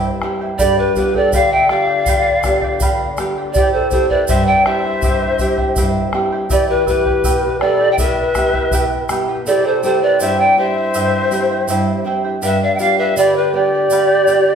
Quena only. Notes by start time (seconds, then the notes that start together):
Already playing: C5
0.60 A4
0.64 G4
0.79 G4
0.95 G4
1.14 A4
1.34 D5
1.52 E5
1.70 D5
3.55 G4
3.74 A4
3.92 A4
4.10 B4
4.27 C5
4.47 D5
4.64 C5
6.50 G4
6.69 G4
6.87 G4
7.62 A4 B4
7.92 E5
7.98 B4
9.47 A4
9.52 G4
9.66 A4
9.84 A4
10.03 B4
10.20 C5
10.40 D5
10.57 C5
12.44 B4
12.62 D5
12.75 E5
12.80 D5
12.98 B4
13.17 G4
13.37 G4
13.55 G4